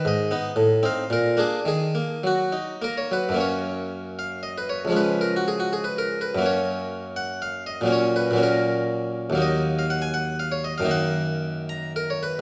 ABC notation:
X:1
M:3/4
L:1/16
Q:1/4=118
K:Ebm
V:1 name="Harpsichord"
e6 f2 B2 A2 | A4 G4 B d c2 | [K:F#] c6 e2 d B c2 | B2 A F G F G B A2 B2 |
c6 f2 e2 d2 | c2 B2 A4 z4 | [K:Ebm] e3 f g a g2 f d e f | g6 b2 B d c2 |]
V:2 name="Harpsichord"
A,,2 [CE]2 =A,,2 [=CE]2 B,,2 [B,=D]2 | E,2 B,2 G,2 E2 B,2 G,2 | [K:F#] [F,,F,A,C]12 | [C,,E,G,C]12 |
[F,,F,A,C]12 | [A,,F,A,C]4 [A,,F,A,C]8 | [K:Ebm] [E,,G,B,E]12 | [G,,E,B,E]12 |]